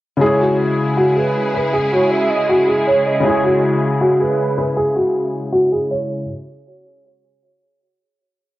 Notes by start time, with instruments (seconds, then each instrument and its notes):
0.17 felt piano C#3 G#3
0.21 string section C#3 G#3 E4 G#4, felt piano E4, grand piano G#4, soft synth lead C#5
0.26 felt piano G#4
0.40 grand piano F#4
0.97 grand piano F#4
1.16 grand piano G#4, soft synth lead B4
1.54 grand piano B4
1.73 grand piano G#4
1.92 grand piano F#4, soft synth lead C#5
2.11 soft synth lead E5
2.30 soft synth lead D#5
2.49 grand piano F#4
2.68 grand piano G#4
2.87 grand piano C#5, soft synth lead C#5
3.06 soft synth lead D#5
3.20 felt piano C#3 G#3
3.25 felt piano E4, grand piano G#4, soft synth lead C#5
3.29 felt piano G#4
3.44 grand piano F#4
4.01 grand piano F#4
4.19 grand piano G#4, soft synth lead B4
4.58 grand piano B4
4.77 grand piano G#4
4.96 grand piano F#4
5.52 grand piano F#4
5.72 grand piano G#4
5.91 grand piano C#5